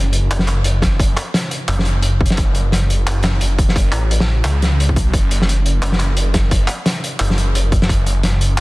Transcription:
Already playing: detuned saw bass F#1
0.13 closed hi-hat
0.31 clap, closed hi-hat
0.39 snare
0.47 clap, closed hi-hat
0.64 detuned saw bass F#1, closed hi-hat
0.82 kick, snare, closed hi-hat
1.00 kick, closed hi-hat
1.17 clap, closed hi-hat
1.34 snare, closed hi-hat
1.51 closed hi-hat
1.68 detuned saw bass F#1, clap, closed hi-hat
1.79 snare
1.85 closed hi-hat
2.03 closed hi-hat
2.21 kick
2.26 closed hi-hat
2.30 snare
2.37 detuned saw bass F#1, kick, closed hi-hat
2.55 closed hi-hat
2.72 snare, closed hi-hat
2.90 closed hi-hat
3.07 clap, closed hi-hat
3.23 clap, snare, closed hi-hat
3.41 detuned saw bass F#1, closed hi-hat
3.59 kick, closed hi-hat
3.69 snare
3.76 kick, closed hi-hat
3.92 detuned saw bass A1, clap, closed hi-hat
4.11 closed hi-hat
4.20 snare
4.44 detuned saw bass C#2, clap, closed hi-hat
4.62 snare, closed hi-hat
4.80 closed hi-hat
4.89 detuned saw bass C2, kick
4.96 kick, closed hi-hat
5.13 detuned saw bass F#1, kick, closed hi-hat
5.31 closed hi-hat
5.42 snare
5.49 closed hi-hat
5.66 closed hi-hat
5.82 clap, closed hi-hat
5.92 snare
6.00 clap, closed hi-hat
6.17 detuned saw bass F#1, closed hi-hat
6.34 kick, snare, closed hi-hat
6.51 kick, closed hi-hat
6.68 clap, closed hi-hat
6.86 snare, closed hi-hat
7.04 closed hi-hat
7.20 detuned saw bass F#1, clap, closed hi-hat
7.30 snare
7.38 closed hi-hat
7.55 closed hi-hat
7.72 kick, closed hi-hat
7.82 snare
7.89 detuned saw bass F#1, kick, closed hi-hat
8.06 closed hi-hat
8.23 snare, closed hi-hat
8.41 closed hi-hat

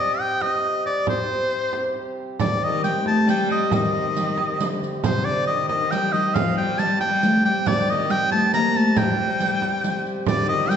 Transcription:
Already playing: harmonium C3 G3, shawm D#5
0.19 shawm G5, frame drum
0.42 shawm D#5, frame drum
0.86 shawm D5, frame drum
1.07 shawm C5, frame drum
1.73 frame drum
1.95 frame drum
2.40 harmonium C3 G3, viola da gamba D3, shawm D5, riq, frame drum
2.62 viola da gamba D#3, shawm D#5
2.84 shawm G5, riq, frame drum
3.04 viola da gamba A3, shawm A5, frame drum
3.27 viola da gamba G3, shawm G5, riq
3.50 shawm D#5, riq, frame drum
3.72 viola da gamba D#3, shawm D#5, riq, frame drum
4.15 riq, frame drum
4.38 frame drum
4.60 viola da gamba D3, riq
4.82 riq, frame drum
5.04 viola da gamba C3, shawm C5, riq, frame drum
5.25 viola da gamba D3, shawm D5
5.47 viola da gamba D#3, shawm D#5, frame drum
5.54 viola da gamba D3 D#3
5.68 viola da gamba D#3, shawm D#5, frame drum
5.91 viola da gamba G3, shawm G5, riq
6.13 viola da gamba D#3, shawm D#5, riq, frame drum
6.34 viola da gamba F3, shawm F5, riq, frame drum
6.57 viola da gamba G3, shawm G5
6.78 shawm A5, riq
7.00 viola da gamba G3, shawm G5, riq, frame drum
7.23 viola da gamba A3, riq, frame drum
7.45 viola da gamba G3, shawm G5, riq, frame drum
7.65 harmonium C3 G3, viola da gamba D3, shawm D5, riq, frame drum
7.89 viola da gamba D#3, shawm D#5
8.10 viola da gamba G3, shawm G5, riq, frame drum
8.32 viola da gamba A3, shawm A5, frame drum
8.54 viola da gamba A#3, shawm A#5, riq
8.75 viola da gamba A3, shawm A5, riq, frame drum
8.96 viola da gamba G3, shawm G5, riq, frame drum
9.06 viola da gamba F3
9.11 viola da gamba G3
9.40 riq, frame drum
9.62 frame drum
9.84 riq
10.05 riq, frame drum
10.27 viola da gamba D3, shawm D5, riq, frame drum
10.48 viola da gamba D#3, shawm D#5
10.69 viola da gamba G3, shawm G5, riq, frame drum

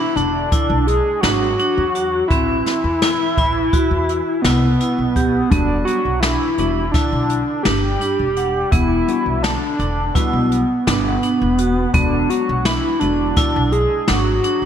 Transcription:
Already playing: analog synth lead E4
0.16 upright bass E1, analog synth lead D4, vibraphone D4, closed hi-hat
0.52 vibraphone E4, kick, closed hi-hat
0.70 upright bass B1
0.87 analog synth lead G#4, closed hi-hat
1.21 upright bass G#1, vibraphone D4, analog synth lead F#4, snare, closed hi-hat
1.59 vibraphone D4, closed hi-hat
1.77 upright bass E2
1.95 vibraphone F#4, closed hi-hat
2.28 upright bass A1, vibraphone C4, analog synth lead E4, kick, closed hi-hat
2.66 snare, closed hi-hat
2.84 upright bass E2
3.02 vibraphone E4, snare, closed hi-hat
3.37 upright bass A1, vibraphone E4, kick, closed hi-hat
3.73 vibraphone F#4, kick, closed hi-hat
3.91 upright bass E2
4.09 closed hi-hat
4.42 upright bass C2, analog synth lead B3, vibraphone E4, snare, closed hi-hat
4.80 vibraphone E4, closed hi-hat
4.98 upright bass B1
5.16 vibraphone G4, kick, closed hi-hat
5.50 upright bass E1, tine electric piano G3 B3 D4 F#4, vibraphone B3, analog synth lead D4, kick, closed hi-hat
5.85 analog synth lead F#4, closed hi-hat
6.05 upright bass B1
6.20 vibraphone D4, analog synth lead E4, snare, closed hi-hat
6.58 upright bass E1, tine electric piano G3 B3 D4 F#4, vibraphone D4, closed hi-hat
6.91 analog synth lead D4, vibraphone E4, kick, snare, closed hi-hat
7.12 upright bass B1
7.30 closed hi-hat
7.63 upright bass G1, vibraphone D4, analog synth lead G4, snare, closed hi-hat
8.01 vibraphone D4, closed hi-hat
8.19 upright bass E1
8.37 vibraphone F#5, closed hi-hat
8.71 upright bass E1, vibraphone B3, analog synth lead E4, kick, closed hi-hat
9.07 tine electric piano G3 B3 D4 F#4, closed hi-hat
9.26 upright bass B1
9.43 analog synth lead D4, vibraphone D4, snare, closed hi-hat
9.79 upright bass E1, vibraphone D4, closed hi-hat
10.14 tine electric piano G3 B3 D4 F#4, analog synth lead B3, vibraphone E4, kick, snare, closed hi-hat
10.33 upright bass B1
10.52 closed hi-hat
10.87 upright bass G1, analog synth lead B3, vibraphone D4, snare, closed hi-hat
11.23 vibraphone D4, closed hi-hat
11.41 upright bass E1
11.58 vibraphone F#4, closed hi-hat
11.93 upright bass E1, tine electric piano G#3 B3 D4 F#4, vibraphone B3, analog synth lead D4, kick, closed hi-hat
12.30 analog synth lead F#4, closed hi-hat
12.49 upright bass B1
12.65 vibraphone D4, analog synth lead E4, snare, closed hi-hat
13.00 upright bass E1, tine electric piano G#3 B3 D4 F#4, analog synth lead D4, vibraphone D4, closed hi-hat
13.36 vibraphone E4, kick, snare, closed hi-hat
13.56 upright bass B1
13.72 analog synth lead G#4, closed hi-hat
14.08 upright bass G#1, vibraphone D4, analog synth lead F#4, snare, closed hi-hat
14.44 vibraphone D4, closed hi-hat
14.62 upright bass G#1

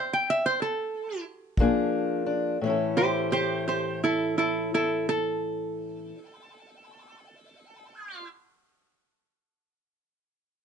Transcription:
Already playing: resonator guitar played with a steel bar C5
0.13 resonator guitar played with a steel bar G5
0.30 resonator guitar played with a steel bar E5
0.46 resonator guitar played with a steel bar C5
0.62 resonator guitar played with a steel bar A4
1.57 steel-string acoustic guitar A#2 F3 A#3 D4, kick
1.61 steel-string acoustic guitar G#4
2.26 steel-string acoustic guitar D4
2.61 steel-string acoustic guitar A2 E3
2.66 steel-string acoustic guitar C#4 E4
2.70 steel-string acoustic guitar A4
2.97 resonator guitar played with a steel bar G4 C5
3.32 resonator guitar played with a steel bar G4 C5
3.68 resonator guitar played with a steel bar G4 C5
4.04 resonator guitar played with a steel bar E4 A4
4.38 resonator guitar played with a steel bar E4 A4
4.74 resonator guitar played with a steel bar E4 A4
5.09 resonator guitar played with a steel bar A4

